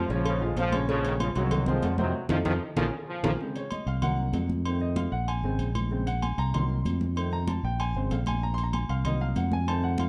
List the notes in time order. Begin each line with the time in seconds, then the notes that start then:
Already playing: F3
0.09 A#1 G#2 C#3 F3 C#4 C#5, cowbell
0.25 C#3, cowbell, high conga, low agogo
0.41 F3 G#3 F4 F5, high conga
0.56 A#1 G#2 C#3 F3, cowbell, high conga, low timbale, low agogo
0.72 C#3 C#4 C#5, cowbell, high conga, low agogo
0.88 G#2 C#3 F3 C#4 C#5, cowbell, high conga
1.04 D#3, high conga, low agogo
1.20 C#3 F3 F4 F5, cowbell, high conga, low agogo
1.35 C2 A#2 C#3 D#3 F#3 F#4 F#5, cowbell, low agogo
1.51 cowbell, high conga, low conga, low agogo
1.66 A#2 F3 G#3 C4 C5 C6, high conga, low conga
1.83 F2 F#3 F#4 F#5, cowbell, high conga, low timbale, low agogo
1.98 A2 C3 D#3 F#3 C4 C5, high conga
2.29 F2 C3 D#3 F3 D#4 F4 A4, cowbell, low conga, high timbale
2.45 F2 C3 D#3 F3 D#4 F4 A4, cowbell, low conga, high timbale
2.77 A#1 A#2 C#3 F3 F4 G#4 A#4, cowbell, low conga, high timbale
3.08 F3
3.23 A#1 A#2 C#3 F3 F4 G#4 A#4, cowbell, low conga, high timbale
3.40 C#3 G#3 C4, high conga
3.55 C#5, high conga, low agogo
3.71 D#5, high conga, low agogo
3.86 C2 F5, low agogo
4.02 D#3 F#3 A#3 F#5, high conga, low conga, low agogo
4.18 high conga
4.33 F2, high conga, low timbale, low agogo
4.49 high conga
4.65 D#3 A3 C4, high conga, low agogo
4.81 D#5, high conga
4.96 F5, high conga, low agogo
5.12 A#1 F#5
5.28 G#5, high conga, low agogo
5.43 G#1 C#3 G#3 C4, high conga
5.59 A#1, high conga, low agogo
5.75 high conga, low agogo
5.91 C#3 G#3 C4, high conga
6.07 F#5, high conga, low agogo
6.22 G#5, high conga, low agogo
6.38 C2 A#5, low agogo
6.54 D#3 F#3 A#3 C6, high conga, low conga, low agogo
6.70 high conga
6.85 F2, high conga, low agogo
7.01 high conga
7.16 D#3 A3 C4, high conga, low agogo
7.32 A#5, high conga
7.47 A5, high conga, low agogo
7.63 A#1 G5
7.79 G#5, high conga, low agogo
7.95 G#1 C#3 G#3 C4 C5, high conga
8.10 A#1 F5, high conga, low timbale, low agogo
8.26 G#5, high conga, low agogo
8.43 A#5, high conga
8.54 C6
8.58 high conga, low agogo
8.64 A#5
8.73 G#5, high conga, low agogo
8.89 C2 F5, low agogo
9.05 D#3 F#3 A#3 D#5, high conga, low conga, low agogo
9.21 F5, high conga
9.36 F2 F#5, high conga, low agogo
9.52 G#5, high conga
9.67 D#3 A3 C4 A5, high conga, low agogo
9.82 F#5, high conga
9.98 F5, high conga, low agogo